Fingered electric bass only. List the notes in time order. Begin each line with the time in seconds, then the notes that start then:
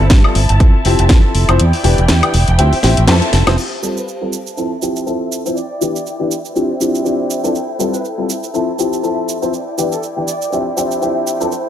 0.11 G2
0.35 G1
0.49 G1
0.60 F2
0.85 F1
0.99 F1
1.10 F2
1.35 F1
1.49 F1
1.60 E2
1.84 E1
1.99 E1
2.09 E2
2.34 E1
2.48 E1
2.59 D2
2.73 muted fingered electric bass stroke
2.84 A1
2.98 A1
3.08 F2
3.33 F1
3.47 F1